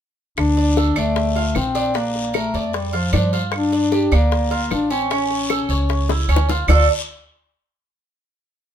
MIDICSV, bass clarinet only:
0, 0, Header, 1, 2, 480
1, 0, Start_track
1, 0, Key_signature, -1, "minor"
1, 0, Tempo, 394218
1, 459, Time_signature, 4, 2, 24, 8
1, 10642, End_track
2, 0, Start_track
2, 0, Title_t, "Bass clarinet"
2, 0, Program_c, 0, 71
2, 470, Note_on_c, 0, 62, 98
2, 1133, Note_off_c, 0, 62, 0
2, 1190, Note_on_c, 0, 57, 98
2, 1906, Note_on_c, 0, 60, 91
2, 1924, Note_off_c, 0, 57, 0
2, 2397, Note_on_c, 0, 58, 94
2, 2415, Note_off_c, 0, 60, 0
2, 2863, Note_off_c, 0, 58, 0
2, 2878, Note_on_c, 0, 57, 83
2, 3311, Note_off_c, 0, 57, 0
2, 3350, Note_on_c, 0, 55, 78
2, 3594, Note_on_c, 0, 53, 78
2, 3612, Note_off_c, 0, 55, 0
2, 3822, Note_off_c, 0, 53, 0
2, 3837, Note_on_c, 0, 53, 78
2, 4159, Note_off_c, 0, 53, 0
2, 4317, Note_on_c, 0, 62, 91
2, 5038, Note_on_c, 0, 58, 91
2, 5056, Note_off_c, 0, 62, 0
2, 5744, Note_off_c, 0, 58, 0
2, 5755, Note_on_c, 0, 62, 90
2, 5988, Note_on_c, 0, 60, 79
2, 6006, Note_off_c, 0, 62, 0
2, 6219, Note_off_c, 0, 60, 0
2, 6240, Note_on_c, 0, 61, 82
2, 7619, Note_off_c, 0, 61, 0
2, 8127, Note_on_c, 0, 65, 74
2, 8354, Note_off_c, 0, 65, 0
2, 10642, End_track
0, 0, End_of_file